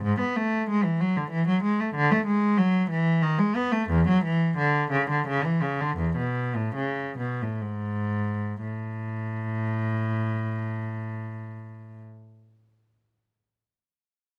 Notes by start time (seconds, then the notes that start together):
0.02 G#2
0.20 B3
0.36 A3
0.69 G#3
0.83 E3
1.01 F#3
1.17 D3
1.31 E3
1.48 F#3
1.63 G#3
1.80 A3
1.95 D3
2.12 A3
2.26 G#3
2.58 F#3
2.90 E3
3.22 D#3
3.39 G#3
3.55 B3
3.72 A3
3.90 E2
4.08 F#3
4.25 E3
4.57 D3
4.91 C#3
5.10 D3
5.28 C#3
5.44 E3
5.62 C#3
5.81 D3
5.97 E2
6.17 B2
6.56 A2
6.75 C#3
7.18 B2
7.42 A2
7.62 G#2
8.62 A2